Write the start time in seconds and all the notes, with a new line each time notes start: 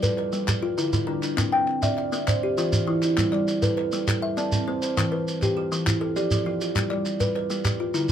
Already playing: D5
0.03 A4 B4, clap, shekere
0.18 B4, clap
0.33 G3, shekere
0.48 G4, clap, shekere
0.63 F4
0.78 D3 E4 B4, shekere
0.93 D3, shekere
1.07 D3 D4
1.23 D4, clap, shekere
1.37 C4, clap, shekere
1.52 C4 G5
1.68 clap
1.83 D5 E5, clap, shekere
1.98 E5, clap
2.12 C4, shekere
2.28 C5 D5, clap, shekere
2.43 G4
2.58 E3 F4 C5, shekere
2.72 E3, shekere
2.87 E3 E4
3.02 E4, clap, shekere
3.18 G3, clap, shekere
3.32 G3 D5, clap
3.48 clap, shekere
3.62 A4 B4, clap, shekere
3.77 B4, clap
3.92 G3, shekere
4.07 G4 A4, clap, shekere
4.22 E5
4.37 C4 D5 A5, shekere
4.52 C4, shekere
4.67 C4 C5
4.82 C5, clap, shekere
4.97 E3, clap, shekere
5.12 E3 B4
5.28 shekere
5.42 F4 G4, clap, shekere
5.57 G4
5.72 E3, shekere
5.86 E4 F4, clap, shekere
6.01 A4
6.16 F3 G4 D5, shekere
6.31 F3, shekere
6.46 F3 F4
6.61 F4, shekere
6.75 G3, clap, shekere
6.90 G3 D5, clap
7.05 clap, shekere
7.20 B4, clap, shekere
7.36 B4, clap
7.50 G3, shekere
7.65 G4, clap, shekere
7.80 F4
7.94 D3 E4, shekere
8.09 shekere